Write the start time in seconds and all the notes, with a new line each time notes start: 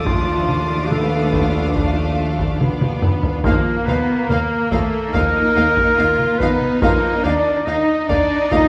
Already playing: D6 D#6 A6
0.06 D#2 F3 A3 D4 F4 F5, taiko
0.49 taiko mid
0.90 A3 B3 A4, taiko mid
1.33 taiko
1.76 A3, taiko
2.39 taiko
2.60 B3, taiko mid
2.81 taiko mid
3.02 taiko low-mid
3.23 taiko low
3.44 D#2 F3 A#3 D#4 F4 A#4 F5, taiko
3.86 D#2 F3 B3 D#4 B4 F5, taiko mid
4.28 D#2 A#3 D#4 A#4 F5, taiko mid
4.71 D#2 F3 A3 D#4 A4 F5, taiko
5.13 D#2 F3 A#3 D#4 F4 A#4 F5, taiko
5.56 D#2 A#3 D#4 F5
5.77 taiko
5.98 D#2 A#3 D#4 F4 F5
6.19 taiko mid
6.38 D#2 F3 B3 D#4 B4 F5, taiko
6.62 taiko mid
6.82 D#2 F3 A#3 D#4 F4 A#4 F5, taiko
7.24 D#2 D#3 A#3 D4 D5 F5
7.66 D#2 A#3 D#4 D#5 F5
8.08 D#2 D#3 A#3 D4 D5 F5, taiko
8.50 D#2 F3 D#4 F4 D#5 F5, taiko
8.54 A#3 D#4